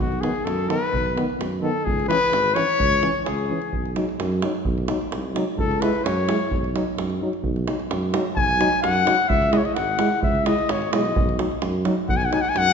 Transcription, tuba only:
0.00 0.25 B1 medium
0.45 0.71 F#2 medium
0.92 1.18 B1 medium
1.39 1.64 F#2 medium
1.85 2.11 C#2 medium
2.31 2.57 G#1 medium
2.79 3.05 C#2 medium
3.25 3.51 C#2 medium
3.73 3.98 B1 medium
4.19 4.45 F#2 medium
4.65 4.91 B1 medium
5.11 5.37 C2 medium
5.57 5.83 C#2 medium
6.05 6.30 F#2 medium
6.50 6.76 B1 medium
6.96 7.22 F#2 medium
7.43 7.69 B1 medium
7.90 8.16 F#2 medium
8.37 8.62 B1 medium
8.83 9.09 F#2 medium
9.29 9.55 C#2 medium
9.76 10.01 G#1 medium
10.23 10.48 C#2 medium
10.69 10.90 G#1 medium
10.92 11.13 B1 medium
11.16 11.41 B1 medium
11.62 11.88 F#2 medium
12.09 12.34 B1 medium
12.55 12.73 F#2 medium

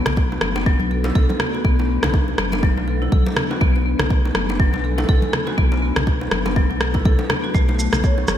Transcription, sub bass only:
0.06 0.38 B1 medium
0.42 0.76 F#1 medium
0.80 1.12 B1 medium
1.15 1.27 B1 medium
1.65 1.99 B1 loud
2.03 2.35 B1 medium
2.38 2.72 F#1 medium
2.77 3.09 B1 medium
3.12 3.23 B1 medium
3.61 3.95 B1 loud
3.99 4.31 B1 medium
4.35 4.69 F#1 medium
4.73 5.05 B1 medium
5.09 5.20 B1 medium
5.58 5.92 B1 loud
5.96 6.28 B1 medium
6.32 6.66 F#1 medium
6.70 7.02 B1 medium
7.05 7.17 B1 medium
7.54 7.89 B1 loud
7.93 8.25 B1 medium
8.28 8.38 F#1 medium

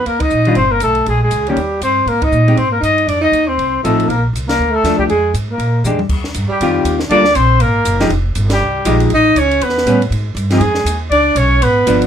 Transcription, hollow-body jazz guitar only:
0.47 0.56 D#3 medium
0.47 0.56 G3 medium
0.47 0.56 D4 medium
0.47 0.56 F4 medium
1.49 1.57 D#3 soft
1.49 1.57 A#3 medium
1.49 1.57 C#4 soft
1.49 1.58 G4 soft
2.48 2.57 G#3 soft
2.48 2.57 C4 soft
2.48 2.57 D#4 soft
2.48 2.57 G4 soft
3.84 4.09 F3 medium
3.84 4.09 C4 medium
3.84 4.09 D#4 medium
3.84 4.09 A4 medium
4.85 5.09 F3 soft
4.85 5.10 A3 medium
4.85 5.10 D4 medium
5.86 5.98 G#3 soft
5.86 5.99 D4 medium
5.86 5.99 G4 medium
6.62 6.98 D#3 medium
6.62 6.98 C4 medium
6.62 6.98 F4 medium
6.62 6.98 G4 medium
7.11 7.24 G3 medium
7.11 7.24 A#3 medium
7.11 7.24 F4 medium
7.11 7.24 A4 medium
8.00 8.09 F3 medium
8.00 8.09 G#3 medium
8.00 8.10 D#4 medium
8.00 8.09 G4 medium
8.86 9.10 F3 medium
8.86 9.11 G#3 medium
8.86 9.11 D#4 medium
8.86 9.11 G4 medium
9.87 10.00 G3 medium
9.87 10.00 B3 medium
9.87 10.00 C#4 medium
10.52 10.60 F3 medium
10.52 10.60 C4 medium
10.52 10.61 D#4 medium
11.87 12.07 F3 medium
11.87 12.07 B3 medium
11.87 12.07 D4 medium

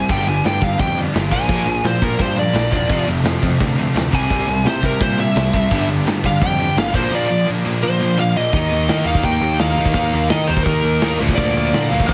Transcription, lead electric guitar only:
0.11 0.27 G5 loud
0.29 0.45 G#5 medium
0.46 0.63 G5 loud
0.64 0.80 F5 medium
0.81 0.97 G5 loud
1.32 1.83 G#5 loud
1.86 2.04 C5 loud
2.04 2.21 A#4 medium
2.21 2.38 C5 medium
2.39 3.06 D5 medium
4.15 4.65 G#5 loud
4.67 4.85 C5 medium
4.85 5.01 A#4 medium
5.02 5.19 C5 medium
5.20 5.87 E5 loud
6.26 6.42 F5 loud
6.42 6.76 G5 loud
6.78 6.95 F5 medium
6.95 7.12 C5 loud
7.15 7.48 D5 loud
7.83 8.17 C5 loud
8.20 8.37 F5 loud
8.37 8.53 D#5 loud
8.54 9.06 D#5 medium
9.07 9.25 F5 medium
9.25 9.58 G5 medium
9.60 9.93 F5 loud
9.95 10.30 F5 loud
10.30 10.49 D#5 loud
10.47 10.63 C5 medium
10.63 11.18 A#4 medium
11.35 11.86 D5 loud
11.89 12.06 F5 medium
12.06 12.14 G5 medium

